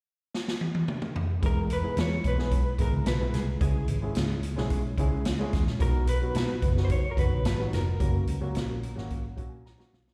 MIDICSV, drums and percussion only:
0, 0, Header, 1, 2, 480
1, 0, Start_track
1, 0, Tempo, 547945
1, 1252, Time_signature, 4, 2, 24, 8
1, 8881, End_track
2, 0, Start_track
2, 0, Title_t, "Drums"
2, 302, Note_on_c, 9, 38, 60
2, 390, Note_off_c, 9, 38, 0
2, 422, Note_on_c, 9, 38, 70
2, 509, Note_off_c, 9, 38, 0
2, 534, Note_on_c, 9, 48, 79
2, 621, Note_off_c, 9, 48, 0
2, 654, Note_on_c, 9, 48, 84
2, 742, Note_off_c, 9, 48, 0
2, 772, Note_on_c, 9, 47, 88
2, 860, Note_off_c, 9, 47, 0
2, 892, Note_on_c, 9, 47, 88
2, 980, Note_off_c, 9, 47, 0
2, 1014, Note_on_c, 9, 43, 100
2, 1101, Note_off_c, 9, 43, 0
2, 1250, Note_on_c, 9, 36, 105
2, 1250, Note_on_c, 9, 42, 75
2, 1337, Note_off_c, 9, 36, 0
2, 1337, Note_off_c, 9, 42, 0
2, 1488, Note_on_c, 9, 42, 73
2, 1576, Note_off_c, 9, 42, 0
2, 1724, Note_on_c, 9, 42, 77
2, 1740, Note_on_c, 9, 38, 100
2, 1812, Note_off_c, 9, 42, 0
2, 1827, Note_off_c, 9, 38, 0
2, 1965, Note_on_c, 9, 36, 87
2, 1965, Note_on_c, 9, 42, 73
2, 2052, Note_off_c, 9, 36, 0
2, 2052, Note_off_c, 9, 42, 0
2, 2094, Note_on_c, 9, 38, 32
2, 2182, Note_off_c, 9, 38, 0
2, 2202, Note_on_c, 9, 42, 70
2, 2204, Note_on_c, 9, 36, 73
2, 2290, Note_off_c, 9, 42, 0
2, 2292, Note_off_c, 9, 36, 0
2, 2439, Note_on_c, 9, 36, 79
2, 2441, Note_on_c, 9, 42, 79
2, 2527, Note_off_c, 9, 36, 0
2, 2528, Note_off_c, 9, 42, 0
2, 2680, Note_on_c, 9, 42, 96
2, 2686, Note_on_c, 9, 38, 100
2, 2767, Note_off_c, 9, 42, 0
2, 2774, Note_off_c, 9, 38, 0
2, 2924, Note_on_c, 9, 42, 68
2, 2929, Note_on_c, 9, 38, 35
2, 3011, Note_off_c, 9, 42, 0
2, 3017, Note_off_c, 9, 38, 0
2, 3160, Note_on_c, 9, 42, 82
2, 3162, Note_on_c, 9, 36, 107
2, 3248, Note_off_c, 9, 42, 0
2, 3249, Note_off_c, 9, 36, 0
2, 3397, Note_on_c, 9, 42, 75
2, 3485, Note_off_c, 9, 42, 0
2, 3635, Note_on_c, 9, 42, 83
2, 3651, Note_on_c, 9, 38, 104
2, 3723, Note_off_c, 9, 42, 0
2, 3738, Note_off_c, 9, 38, 0
2, 3881, Note_on_c, 9, 42, 71
2, 3968, Note_off_c, 9, 42, 0
2, 4010, Note_on_c, 9, 38, 33
2, 4097, Note_off_c, 9, 38, 0
2, 4118, Note_on_c, 9, 42, 73
2, 4121, Note_on_c, 9, 36, 80
2, 4206, Note_off_c, 9, 42, 0
2, 4209, Note_off_c, 9, 36, 0
2, 4359, Note_on_c, 9, 36, 87
2, 4361, Note_on_c, 9, 42, 71
2, 4446, Note_off_c, 9, 36, 0
2, 4448, Note_off_c, 9, 42, 0
2, 4600, Note_on_c, 9, 42, 90
2, 4607, Note_on_c, 9, 38, 101
2, 4688, Note_off_c, 9, 42, 0
2, 4694, Note_off_c, 9, 38, 0
2, 4844, Note_on_c, 9, 42, 71
2, 4847, Note_on_c, 9, 36, 92
2, 4849, Note_on_c, 9, 38, 38
2, 4932, Note_off_c, 9, 42, 0
2, 4934, Note_off_c, 9, 36, 0
2, 4937, Note_off_c, 9, 38, 0
2, 4968, Note_on_c, 9, 38, 36
2, 5056, Note_off_c, 9, 38, 0
2, 5082, Note_on_c, 9, 42, 84
2, 5083, Note_on_c, 9, 36, 109
2, 5170, Note_off_c, 9, 36, 0
2, 5170, Note_off_c, 9, 42, 0
2, 5320, Note_on_c, 9, 42, 85
2, 5407, Note_off_c, 9, 42, 0
2, 5559, Note_on_c, 9, 42, 88
2, 5575, Note_on_c, 9, 38, 96
2, 5647, Note_off_c, 9, 42, 0
2, 5663, Note_off_c, 9, 38, 0
2, 5800, Note_on_c, 9, 42, 73
2, 5802, Note_on_c, 9, 36, 101
2, 5888, Note_off_c, 9, 42, 0
2, 5890, Note_off_c, 9, 36, 0
2, 5932, Note_on_c, 9, 38, 31
2, 6020, Note_off_c, 9, 38, 0
2, 6041, Note_on_c, 9, 42, 69
2, 6045, Note_on_c, 9, 36, 81
2, 6129, Note_off_c, 9, 42, 0
2, 6132, Note_off_c, 9, 36, 0
2, 6282, Note_on_c, 9, 36, 87
2, 6287, Note_on_c, 9, 42, 78
2, 6370, Note_off_c, 9, 36, 0
2, 6375, Note_off_c, 9, 42, 0
2, 6527, Note_on_c, 9, 42, 103
2, 6533, Note_on_c, 9, 38, 113
2, 6614, Note_off_c, 9, 42, 0
2, 6621, Note_off_c, 9, 38, 0
2, 6771, Note_on_c, 9, 42, 72
2, 6777, Note_on_c, 9, 38, 37
2, 6859, Note_off_c, 9, 42, 0
2, 6864, Note_off_c, 9, 38, 0
2, 7009, Note_on_c, 9, 36, 112
2, 7009, Note_on_c, 9, 42, 75
2, 7096, Note_off_c, 9, 42, 0
2, 7097, Note_off_c, 9, 36, 0
2, 7248, Note_on_c, 9, 42, 83
2, 7336, Note_off_c, 9, 42, 0
2, 7488, Note_on_c, 9, 42, 85
2, 7504, Note_on_c, 9, 38, 105
2, 7576, Note_off_c, 9, 42, 0
2, 7592, Note_off_c, 9, 38, 0
2, 7737, Note_on_c, 9, 42, 70
2, 7824, Note_off_c, 9, 42, 0
2, 7866, Note_on_c, 9, 38, 35
2, 7953, Note_off_c, 9, 38, 0
2, 7976, Note_on_c, 9, 36, 79
2, 7976, Note_on_c, 9, 42, 76
2, 8063, Note_off_c, 9, 36, 0
2, 8063, Note_off_c, 9, 42, 0
2, 8213, Note_on_c, 9, 36, 86
2, 8217, Note_on_c, 9, 42, 78
2, 8301, Note_off_c, 9, 36, 0
2, 8304, Note_off_c, 9, 42, 0
2, 8466, Note_on_c, 9, 38, 55
2, 8553, Note_off_c, 9, 38, 0
2, 8586, Note_on_c, 9, 38, 65
2, 8673, Note_off_c, 9, 38, 0
2, 8708, Note_on_c, 9, 38, 90
2, 8795, Note_off_c, 9, 38, 0
2, 8828, Note_on_c, 9, 38, 83
2, 8881, Note_off_c, 9, 38, 0
2, 8881, End_track
0, 0, End_of_file